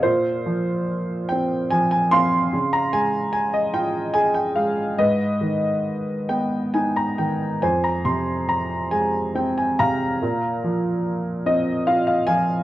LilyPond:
<<
  \new Staff \with { instrumentName = "Upright piano" } { \time 3/4 \key bes \dorian \tempo 4 = 71 << { c''4. g''8 aes''16 aes''16 c'''8~ | c'''16 bes''16 aes''8 aes''16 ees''16 g''8 aes''16 g''16 f''8 | ees''4. g''8 aes''16 bes''16 g''8 | aes''16 bes''16 c'''8 bes''8 aes''8 g''16 aes''16 bes''8~ |
bes''4. ees''8 f''16 f''16 aes''8 | } \\ { f'4. r4 f''8~ | f''4 r2 | ces''4. r4. | c''4. r4 f''8~ |
f''4. r4 f''8 | } >> }
  \new Staff \with { instrumentName = "Upright piano" } { \clef bass \time 3/4 \key bes \dorian bes,8 f4 c'8 f8 c'8 | des8 aes4 f'8 aes'8 aes8 | aes,8 ees4 ces'8 ees'8 ees8 | f,8 c4 aes8 c'8 c8 |
bes,8 f4 c'8 f'8 f8 | }
>>